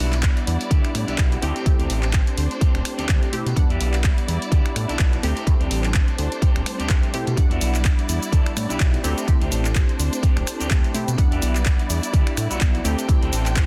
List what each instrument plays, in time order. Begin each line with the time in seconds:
Already playing: analog polysynth G3 B3 D4 F#5, clean electric guitar D4 E4 F#4, violin section E4 D5
0.00 analog synth bass B1, open hi-hat
0.13 clap, closed hi-hat, tambourine
0.23 kick, clap, closed hi-hat
0.36 muted clean electric guitar stroke, closed hi-hat, tambourine
0.47 analog synth bass E2, open hi-hat
0.60 closed hi-hat, tambourine
0.70 analog synth bass D2, clean electric guitar D4 E4 G4, kick, closed hi-hat
0.84 finger snap, closed hi-hat, tambourine
0.95 analog synth bass A2, finger snap, open hi-hat
1.07 analog synth bass B1, clean electric guitar D4 E4 G4, closed hi-hat, tambourine
1.18 analog synth bass B1, kick, clap, closed hi-hat
1.32 closed hi-hat, tambourine
1.42 analog synth bass D2, analog polysynth A3 C4 E4 G4, clean electric guitar C4 D4 G4, violin section D4 C5, open hi-hat
1.56 closed hi-hat, tambourine
1.65 analog synth bass D2, analog polysynth A3 C4 E4 G4, kick, closed hi-hat
1.79 analog synth bass D2, clean electric guitar C4 D4 G4, closed hi-hat, tambourine
1.90 analog synth bass A1, open hi-hat
2.03 clap, closed hi-hat, tambourine
2.13 kick, clap, closed hi-hat
2.26 muted clean electric guitar stroke, closed hi-hat, tambourine
2.38 analog synth bass D2, open hi-hat
2.51 closed hi-hat, tambourine
2.61 clean electric guitar C4 D4 G4, kick, closed hi-hat
2.75 analog synth bass D1, finger snap, closed hi-hat, tambourine
2.85 finger snap, open hi-hat
2.98 analog synth bass D2, clean electric guitar C4 D4 G4, closed hi-hat, tambourine
3.09 analog synth bass D2, kick, clap, closed hi-hat
3.22 closed hi-hat, tambourine
3.32 analog synth bass B2, analog polysynth A3 C4 E4 G4, open hi-hat
3.46 analog synth bass B2, closed hi-hat, tambourine
3.56 analog synth bass E2, analog polysynth G3 B3 D4 F#5, violin section E4 D5, muted clean electric guitar stroke, kick, closed hi-hat, tambourine
3.69 analog synth bass E2, clean electric guitar D4 E4 G4, closed hi-hat, tambourine
3.80 analog synth bass B1, open hi-hat
3.94 clap, closed hi-hat, tambourine
4.04 kick, clap, closed hi-hat
4.17 muted clean electric guitar stroke, closed hi-hat, tambourine
4.28 analog synth bass E2, open hi-hat
4.42 closed hi-hat, tambourine
4.51 analog synth bass D2, clean electric guitar D4 E4 G4, kick, closed hi-hat
4.65 finger snap, closed hi-hat, tambourine
4.76 analog synth bass A2, finger snap, open hi-hat
4.88 analog synth bass B1, clean electric guitar D4 E4 A4, closed hi-hat, tambourine
4.99 analog synth bass B1, kick, clap, closed hi-hat
5.13 closed hi-hat, tambourine
5.22 analog synth bass D2, analog polysynth A3 C4 E4 G4, clean electric guitar C4 D4 G4, violin section D4 C5, open hi-hat
5.36 closed hi-hat, tambourine
5.46 analog synth bass D2, analog polysynth G3 A3 C4 E4, kick, closed hi-hat
5.60 analog synth bass D2, clean electric guitar C4 D4 G4, closed hi-hat, tambourine
5.71 analog synth bass A1, open hi-hat
5.84 clap, closed hi-hat, tambourine
5.94 kick, clap, closed hi-hat
6.07 muted clean electric guitar stroke, closed hi-hat, tambourine
6.18 analog synth bass D2, open hi-hat
6.32 closed hi-hat, tambourine
6.41 clean electric guitar C4 D4 G4, kick, closed hi-hat, tambourine
6.55 analog synth bass D1, finger snap, closed hi-hat, tambourine
6.66 finger snap, open hi-hat
6.79 analog synth bass D2, clean electric guitar C4 D4 G4, closed hi-hat, tambourine
6.89 analog synth bass D2, kick, clap, closed hi-hat
7.02 closed hi-hat, tambourine
7.13 analog synth bass B2, analog polysynth A3 C4 E4 G4, open hi-hat
7.27 analog synth bass B2, closed hi-hat, tambourine
7.36 analog synth bass E2, analog polysynth G3 B3 D4 F#5, violin section E4 D5, muted clean electric guitar stroke, kick, closed hi-hat, cabasa
7.50 analog synth bass E2, clean electric guitar D4 E4 F#4, closed hi-hat, tambourine
7.61 analog synth bass B1, open hi-hat, cabasa
7.74 clap, closed hi-hat, tambourine, cabasa
7.85 kick, clap, closed hi-hat, cabasa
7.98 muted clean electric guitar stroke, closed hi-hat, tambourine
8.09 analog synth bass E2, open hi-hat, cabasa
8.23 closed hi-hat, tambourine, cabasa
8.32 analog synth bass D2, clean electric guitar D4 E4 A4, kick, closed hi-hat, cabasa
8.46 finger snap, closed hi-hat, tambourine
8.57 analog synth bass A2, finger snap, open hi-hat, cabasa
8.69 analog synth bass B1, clean electric guitar D4 E4 G4, closed hi-hat, tambourine, cabasa
8.80 analog synth bass B1, kick, clap, closed hi-hat, cabasa
8.93 closed hi-hat, tambourine
9.03 analog synth bass D2, analog polysynth A3 C4 E4 G4, clean electric guitar C4 D4 G4, violin section D4 C5, open hi-hat, cabasa
9.17 closed hi-hat, tambourine, cabasa
9.27 analog synth bass D2, analog polysynth A3 C4 E4 G4, kick, closed hi-hat, cabasa
9.40 analog synth bass D2, clean electric guitar C4 D4 G4, closed hi-hat, tambourine
9.52 analog synth bass A1, open hi-hat, cabasa
9.65 clap, closed hi-hat, tambourine, cabasa
9.75 kick, clap, closed hi-hat, cabasa
9.88 muted clean electric guitar stroke, closed hi-hat, tambourine
9.99 analog synth bass D2, open hi-hat, cabasa
10.12 closed hi-hat, tambourine, cabasa
10.23 clean electric guitar C4 D4 G4, kick, closed hi-hat, tambourine, cabasa
10.37 analog synth bass D1, finger snap, closed hi-hat, tambourine
10.47 finger snap, open hi-hat, cabasa
10.60 analog synth bass D2, clean electric guitar C4 D4 G4, closed hi-hat, tambourine, cabasa
10.71 analog synth bass D2, kick, clap, closed hi-hat, cabasa
10.84 closed hi-hat, tambourine
10.94 analog synth bass B2, analog polysynth A3 C4 E4 G4, open hi-hat, cabasa
11.08 analog synth bass B2, closed hi-hat, tambourine, cabasa
11.17 analog synth bass E2, analog polysynth G3 B3 D4 F#5, violin section E4 D5, muted clean electric guitar stroke, kick, closed hi-hat, cabasa
11.31 analog synth bass E2, clean electric guitar D4 E4 G4, closed hi-hat, tambourine
11.42 analog synth bass B1, open hi-hat, cabasa
11.55 clap, closed hi-hat, tambourine, cabasa
11.66 kick, clap, closed hi-hat, cabasa
11.79 muted clean electric guitar stroke, closed hi-hat, tambourine
11.90 analog synth bass E2, open hi-hat, cabasa
12.03 closed hi-hat, tambourine, cabasa
12.13 analog synth bass D2, clean electric guitar D4 E4 G4, kick, closed hi-hat, cabasa
12.26 finger snap, closed hi-hat, tambourine
12.37 analog synth bass A2, finger snap, open hi-hat, cabasa
12.50 analog synth bass B1, clean electric guitar D4 E4 F#4, closed hi-hat, tambourine, cabasa
12.61 analog synth bass B1, kick, clap, closed hi-hat, cabasa
12.75 closed hi-hat, tambourine
12.84 analog synth bass D2, analog polysynth A3 C4 E4 G4, clean electric guitar C4 D4 G4, violin section D4 C5 G5, open hi-hat, cabasa
12.99 closed hi-hat, tambourine, cabasa
13.08 analog synth bass D2, analog polysynth A3 C4 E4 G4, kick, closed hi-hat, cabasa
13.21 analog synth bass D2, clean electric guitar C4 D4 A4, closed hi-hat, tambourine
13.32 analog synth bass A1, open hi-hat, cabasa
13.46 clap, closed hi-hat, tambourine, cabasa
13.56 kick, clap, closed hi-hat, cabasa